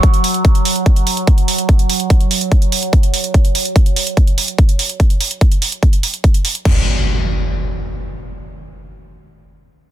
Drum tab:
CC |----------------|----------------|----------------|----------------|
HH |xxoxxxoxxxoxxxox|xxoxxxoxxxoxxxox|xxoxxxoxxxoxxxox|xxoxxxoxxxoxxxox|
BD |o---o---o---o---|o---o---o---o---|o---o---o---o---|o---o---o---o---|

CC |x---------------|----------------|
HH |----------------|----------------|
BD |o---------------|----------------|